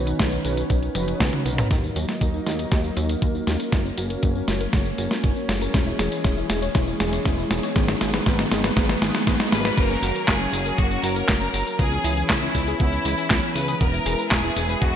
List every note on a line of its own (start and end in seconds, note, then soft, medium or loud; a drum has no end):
0.00 0.14 B1 medium
0.00 1.69 D#3 medium
0.00 1.67 B3 medium
0.00 0.42 C#4 medium
0.00 1.69 C#4 loud
0.00 0.42 D#4 medium
0.00 0.42 F#4 medium
0.00 0.42 B4 medium
0.07 closed hi-hat medium
0.07 tambourine soft
0.20 0.39 B1 loud
0.20 kick loud
0.20 snare loud
0.20 closed hi-hat medium
0.20 tambourine soft
0.32 closed hi-hat soft
0.32 tambourine soft
0.45 0.64 B1 medium
0.45 0.61 C#4 medium
0.45 0.61 D#4 medium
0.45 0.61 F#4 medium
0.45 0.61 B4 loud
0.45 closed hi-hat medium
0.45 tambourine medium
0.57 closed hi-hat medium
0.57 tambourine soft
0.70 0.89 B1 medium
0.70 kick loud
0.70 closed hi-hat medium
0.70 tambourine soft
0.83 closed hi-hat soft
0.83 tambourine soft
0.95 1.14 F#1 loud
0.95 1.43 C#4 loud
0.95 1.43 D#4 medium
0.95 1.43 F#4 medium
0.95 1.42 B4 loud
0.95 closed hi-hat medium
0.95 high tom medium
0.95 tambourine medium
1.08 closed hi-hat medium
1.08 tambourine soft
1.20 1.30 B1 medium
1.20 kick loud
1.20 snare loud
1.20 closed hi-hat medium
1.20 mid tom medium
1.20 tambourine soft
1.33 closed hi-hat soft
1.33 mid tom medium
1.33 tambourine soft
1.46 1.65 B1 medium
1.46 1.93 A#3 medium
1.46 1.93 D#4 medium
1.46 1.93 F#4 medium
1.46 1.93 A#4 loud
1.46 closed hi-hat medium
1.46 tambourine medium
1.58 closed hi-hat medium
1.58 mid tom medium
1.58 tambourine soft
1.71 1.90 D#2 loud
1.71 3.71 F#3 medium
1.71 1.83 A#3 medium
1.71 5.70 A#3 medium
1.71 3.71 D#4 medium
1.71 kick loud
1.71 snare soft
1.71 closed hi-hat medium
1.71 tambourine soft
1.83 1.89 D#4 loud
1.83 tambourine soft
1.96 2.06 D#2 medium
1.96 2.43 A#3 medium
1.96 2.43 D#4 medium
1.96 2.43 F#4 medium
1.96 2.05 F#4 loud
1.96 2.43 A#4 medium
1.96 closed hi-hat medium
1.96 tambourine medium
2.09 2.17 A#4 medium
2.09 snare soft
2.09 closed hi-hat medium
2.09 tambourine soft
2.21 2.41 D#2 medium
2.21 2.30 A#3 medium
2.21 kick loud
2.21 closed hi-hat medium
2.21 tambourine soft
2.34 2.43 D#4 loud
2.34 tambourine soft
2.46 2.66 D#2 loud
2.46 2.63 A#3 medium
2.46 2.63 D#4 medium
2.46 2.58 F#4 medium
2.46 2.63 F#4 medium
2.46 2.63 A#4 loud
2.46 snare soft
2.46 closed hi-hat medium
2.46 tambourine medium
2.59 2.68 A#4 loud
2.59 closed hi-hat medium
2.59 tambourine soft
2.72 2.91 D#2 loud
2.72 2.84 A#3 loud
2.72 kick loud
2.72 snare medium
2.72 closed hi-hat medium
2.72 tambourine soft
2.84 2.96 D#4 medium
2.84 closed hi-hat soft
2.84 tambourine soft
2.97 3.16 D#2 loud
2.97 3.44 A#3 loud
2.97 3.44 D#4 medium
2.97 3.05 F#4 loud
2.97 3.44 F#4 medium
2.97 3.44 A#4 loud
2.97 closed hi-hat medium
2.97 tambourine medium
3.09 3.21 A#4 medium
3.09 closed hi-hat medium
3.09 tambourine soft
3.22 3.41 D#2 medium
3.22 3.31 A#3 medium
3.22 kick loud
3.22 closed hi-hat medium
3.22 tambourine soft
3.35 3.43 D#4 loud
3.35 tambourine soft
3.47 3.57 D#2 loud
3.47 3.95 A#3 medium
3.47 3.95 C#4 medium
3.47 3.59 F#4 medium
3.47 3.95 F#4 medium
3.47 snare medium
3.47 closed hi-hat medium
3.47 tambourine medium
3.60 3.69 A#4 loud
3.60 closed hi-hat medium
3.60 tambourine soft
3.72 3.92 F#1 loud
3.72 5.72 F#3 medium
3.72 3.84 A#3 medium
3.72 7.72 C#4 medium
3.72 kick loud
3.72 snare medium
3.72 closed hi-hat medium
3.72 tambourine soft
3.85 3.90 C#4 loud
3.85 tambourine soft
3.98 4.17 F#1 medium
3.98 4.45 A#3 medium
3.98 4.45 C#4 medium
3.98 4.06 F#4 loud
3.98 4.45 F#4 medium
3.98 4.45 A#4 medium
3.98 closed hi-hat medium
3.98 tambourine medium
4.10 4.19 A#4 medium
4.10 closed hi-hat medium
4.10 tambourine soft
4.23 4.42 F#1 loud
4.23 4.32 A#3 medium
4.23 kick loud
4.23 closed hi-hat medium
4.23 tambourine soft
4.35 4.44 C#4 loud
4.35 tambourine soft
4.48 4.68 F#1 medium
4.48 4.65 A#3 medium
4.48 4.65 C#4 medium
4.48 4.60 F#4 medium
4.48 4.65 F#4 medium
4.48 4.65 A#4 loud
4.48 snare medium
4.48 closed hi-hat medium
4.48 tambourine medium
4.60 4.69 A#4 loud
4.60 closed hi-hat soft
4.60 tambourine soft
4.73 4.93 F#1 medium
4.73 4.85 A#3 loud
4.73 kick loud
4.73 snare medium
4.73 closed hi-hat medium
4.73 tambourine soft
4.86 4.98 C#4 medium
4.86 closed hi-hat soft
4.86 tambourine soft
4.98 5.08 F#1 loud
4.98 5.46 A#3 medium
4.98 5.46 C#4 medium
4.98 5.07 F#4 loud
4.98 5.46 F#4 medium
4.98 5.46 A#4 loud
4.98 closed hi-hat medium
4.98 tambourine medium
5.11 5.23 A#4 medium
5.11 snare medium
5.11 closed hi-hat medium
5.11 tambourine soft
5.24 5.33 F#1 medium
5.24 5.32 A#3 medium
5.24 kick loud
5.24 closed hi-hat medium
5.24 tambourine soft
5.36 5.45 C#4 medium
5.36 tambourine soft
5.49 5.68 F#1 medium
5.49 5.96 G#3 medium
5.49 5.61 F#4 medium
5.49 5.96 G#4 medium
5.49 snare medium
5.49 closed hi-hat medium
5.49 tambourine medium
5.61 5.70 A#4 loud
5.61 closed hi-hat medium
5.61 tambourine soft
5.74 5.94 E1 loud
5.74 7.74 E3 medium
5.74 9.73 G#3 medium
5.74 5.86 C#4 medium
5.74 kick loud
5.74 snare medium
5.74 closed hi-hat medium
5.74 tambourine soft
5.87 5.92 E4 loud
5.87 tambourine soft
5.99 6.09 E1 medium
5.99 6.47 G#3 medium
5.99 6.47 C#4 medium
5.99 6.47 E4 medium
5.99 6.08 G#4 loud
5.99 6.47 G#4 medium
5.99 snare medium
5.99 closed hi-hat medium
5.99 tambourine medium
6.12 6.21 C#5 medium
6.12 closed hi-hat soft
6.12 tambourine soft
6.24 6.44 E1 medium
6.24 6.33 C#4 medium
6.24 kick loud
6.24 snare medium
6.24 closed hi-hat medium
6.24 tambourine soft
6.37 6.46 E4 loud
6.37 tambourine soft
6.49 6.69 E1 medium
6.49 6.67 G#3 medium
6.49 6.67 C#4 medium
6.49 6.67 E4 medium
6.49 6.62 G#4 medium
6.49 6.67 G#4 medium
6.49 snare medium
6.49 closed hi-hat medium
6.49 tambourine medium
6.62 6.71 C#5 loud
6.62 closed hi-hat soft
6.62 tambourine soft
6.75 6.94 E1 loud
6.75 6.87 C#4 loud
6.75 kick loud
6.75 snare medium
6.75 closed hi-hat medium
6.75 tambourine soft
6.87 6.99 E4 medium
6.87 closed hi-hat soft
6.87 tambourine soft
7.00 7.19 E1 loud
7.00 7.48 G#3 loud
7.00 7.48 C#4 medium
7.00 7.48 E4 medium
7.00 7.09 G#4 loud
7.00 7.48 G#4 loud
7.00 snare medium
7.00 closed hi-hat medium
7.00 tambourine medium
7.13 7.25 C#5 medium
7.13 closed hi-hat medium
7.13 tambourine soft
7.25 7.45 E1 medium
7.25 7.34 C#4 medium
7.25 kick loud
7.25 snare medium
7.25 closed hi-hat medium
7.25 tambourine soft
7.38 7.47 E4 loud
7.38 tambourine soft
7.50 7.60 E1 loud
7.50 7.98 G#3 medium
7.50 7.98 B3 medium
7.50 7.98 D#4 medium
7.50 7.62 G#4 medium
7.50 7.98 G#4 medium
7.50 snare medium
7.50 closed hi-hat medium
7.50 tambourine medium
7.63 7.72 C#5 loud
7.63 closed hi-hat medium
7.63 tambourine soft
7.76 7.95 G#1 loud
7.76 9.76 D#3 medium
7.76 7.88 B3 medium
7.76 9.76 B3 loud
7.76 kick loud
7.76 snare medium
7.76 closed hi-hat medium
7.76 tambourine soft
7.88 7.94 D#4 loud
7.88 snare medium
7.88 closed hi-hat soft
7.88 tambourine soft
8.01 8.21 G#1 medium
8.01 8.48 G#3 medium
8.01 8.48 B3 medium
8.01 8.48 D#4 medium
8.01 8.10 G#4 loud
8.01 8.48 G#4 medium
8.01 snare medium
8.01 closed hi-hat medium
8.01 tambourine medium
8.13 8.22 B4 medium
8.13 snare medium
8.13 closed hi-hat soft
8.13 tambourine soft
8.26 8.46 G#1 loud
8.26 8.35 B3 medium
8.26 kick loud
8.26 snare loud
8.26 closed hi-hat medium
8.26 tambourine soft
8.39 8.47 D#4 loud
8.39 snare medium
8.39 tambourine soft
8.51 8.71 G#1 medium
8.51 8.68 G#3 medium
8.51 8.68 B3 medium
8.51 8.68 D#4 medium
8.51 8.63 G#4 medium
8.51 8.68 G#4 medium
8.51 snare loud
8.51 closed hi-hat medium
8.51 tambourine medium
8.64 8.73 B4 loud
8.64 snare medium
8.64 closed hi-hat soft
8.64 tambourine soft
8.76 8.96 G#1 medium
8.76 8.88 B3 loud
8.76 kick loud
8.76 snare loud
8.76 closed hi-hat medium
8.76 tambourine soft
8.89 9.01 D#4 medium
8.89 snare medium
8.89 closed hi-hat soft
8.89 tambourine soft
9.02 9.11 G#1 loud
9.02 9.49 G#3 medium
9.02 9.49 B3 medium
9.02 9.49 D#4 medium
9.02 9.11 G#4 loud
9.02 9.49 G#4 medium
9.02 snare loud
9.02 closed hi-hat medium
9.02 tambourine medium
9.14 9.26 B4 medium
9.14 snare medium
9.14 closed hi-hat soft
9.14 tambourine soft
9.27 9.37 G#1 medium
9.27 9.36 B3 medium
9.27 kick loud
9.27 snare loud
9.27 closed hi-hat medium
9.27 tambourine soft
9.40 9.48 D#4 medium
9.40 snare medium
9.40 tambourine soft
9.52 9.71 G#1 medium
9.52 10.00 A#3 medium
9.52 10.00 C#4 medium
9.52 10.00 F#4 medium
9.52 9.64 G#4 medium
9.52 10.00 A#4 loud
9.52 9.76 B4 loud
9.52 snare loud
9.52 closed hi-hat medium
9.52 tambourine medium
9.65 9.74 B4 loud
9.65 snare medium
9.65 closed hi-hat soft
9.65 tambourine soft
9.77 9.97 F#1 loud
9.77 11.77 F#3 medium
9.77 11.77 A#3 medium
9.77 9.89 A#3 medium
9.77 11.77 C#4 loud
9.77 10.28 A#4 loud
9.77 kick loud
9.77 closed hi-hat medium
9.77 crash loud
9.77 tambourine soft
9.90 9.95 C#4 loud
9.90 closed hi-hat soft
9.90 tambourine soft
10.02 10.12 F#1 loud
10.02 10.11 F#4 loud
10.02 open hi-hat loud
10.02 tambourine medium
10.15 10.24 A#4 medium
10.15 closed hi-hat soft
10.15 tambourine soft
10.28 10.47 F#1 medium
10.28 10.37 A#3 medium
10.28 10.78 G#4 loud
10.28 kick loud
10.28 snare loud
10.28 clap loud
10.28 closed hi-hat medium
10.28 tambourine soft
10.40 10.49 C#4 loud
10.40 closed hi-hat soft
10.40 tambourine soft
10.53 10.72 F#1 loud
10.53 10.65 F#4 medium
10.53 open hi-hat medium
10.53 tambourine medium
10.66 10.74 A#4 loud
10.66 closed hi-hat soft
10.66 tambourine soft
10.78 10.98 F#1 loud
10.78 10.90 A#3 loud
10.78 11.03 F#4 loud
10.78 kick loud
10.78 closed hi-hat medium
10.78 tambourine soft
10.91 11.03 C#4 medium
10.91 closed hi-hat soft
10.91 tambourine soft
11.03 11.23 F#1 medium
11.03 11.12 F#4 loud
11.03 11.79 A#4 loud
11.03 open hi-hat loud
11.03 tambourine medium
11.16 11.28 A#4 medium
11.16 closed hi-hat soft
11.16 tambourine soft
11.28 11.48 F#1 medium
11.28 11.37 A#3 medium
11.28 kick loud
11.28 snare loud
11.28 clap loud
11.28 closed hi-hat medium
11.28 tambourine soft
11.41 11.50 C#4 loud
11.41 closed hi-hat soft
11.41 tambourine soft
11.54 11.64 F#1 loud
11.54 11.66 F#4 medium
11.54 open hi-hat medium
11.54 tambourine medium
11.66 11.75 A#4 loud
11.66 closed hi-hat soft
11.66 tambourine soft
11.79 11.99 C#2 loud
11.79 13.79 E3 medium
11.79 11.91 B3 medium
11.79 14.96 B3 medium
11.79 13.79 C#4 medium
11.79 12.26 G#4 loud
11.79 kick loud
11.79 closed hi-hat medium
11.79 tambourine soft
11.92 11.97 C#4 loud
11.92 closed hi-hat soft
11.92 tambourine soft
12.04 12.24 C#2 medium
12.04 12.13 E4 loud
12.04 open hi-hat loud
12.04 tambourine medium
12.17 12.26 G#4 medium
12.17 closed hi-hat soft
12.17 tambourine soft
12.29 12.49 C#2 loud
12.29 12.38 B3 medium
12.29 12.76 E4 loud
12.29 kick loud
12.29 snare loud
12.29 clap loud
12.29 closed hi-hat medium
12.29 tambourine soft
12.42 12.51 C#4 loud
12.42 closed hi-hat soft
12.42 tambourine soft
12.55 12.74 C#2 medium
12.55 12.67 E4 medium
12.55 kick medium
12.55 open hi-hat medium
12.55 tambourine medium
12.67 12.76 G#4 loud
12.67 closed hi-hat soft
12.67 tambourine soft
12.80 12.99 C#2 medium
12.80 12.92 B3 loud
12.80 13.51 E4 loud
12.80 kick loud
12.80 closed hi-hat medium
12.80 tambourine soft
12.92 13.05 C#4 medium
12.92 closed hi-hat soft
12.92 tambourine soft
13.05 13.15 C#2 loud
13.05 13.14 E4 loud
13.05 open hi-hat loud
13.05 tambourine medium
13.18 13.30 G#4 medium
13.18 closed hi-hat soft
13.18 tambourine soft
13.30 13.40 C#2 medium
13.30 13.39 B3 medium
13.30 kick loud
13.30 snare loud
13.30 clap loud
13.30 closed hi-hat medium
13.30 tambourine soft
13.43 13.52 C#4 medium
13.43 closed hi-hat soft
13.43 tambourine soft
13.55 13.75 C#2 medium
13.55 13.68 E4 medium
13.55 13.81 B4 loud
13.55 open hi-hat medium
13.55 tambourine medium
13.68 13.77 G#4 loud
13.68 closed hi-hat soft
13.68 tambourine soft
13.80 14.00 E1 loud
13.80 14.96 G#3 medium
13.80 13.93 B3 medium
13.80 14.96 E4 loud
13.80 14.31 A#4 loud
13.80 kick loud
13.80 closed hi-hat medium
13.80 tambourine soft
13.93 13.99 E4 loud
13.93 closed hi-hat soft
13.93 tambourine soft
14.06 14.16 E1 loud
14.06 14.15 G#4 loud
14.06 open hi-hat loud
14.06 tambourine medium
14.19 14.27 B4 medium
14.19 closed hi-hat soft
14.19 tambourine soft
14.31 14.51 E1 medium
14.31 14.40 B3 medium
14.31 14.82 G#4 loud
14.31 kick loud
14.31 snare loud
14.31 clap loud
14.31 closed hi-hat medium
14.31 tambourine soft
14.44 14.53 E4 loud
14.44 closed hi-hat soft
14.44 tambourine soft
14.56 14.76 E1 medium
14.56 14.68 G#4 medium
14.56 open hi-hat medium
14.56 tambourine medium
14.69 14.78 B4 loud
14.69 closed hi-hat soft
14.69 tambourine soft
14.82 14.96 E1 loud
14.82 14.94 B3 loud
14.82 14.96 F#4 loud
14.82 kick loud
14.82 closed hi-hat medium
14.82 tambourine soft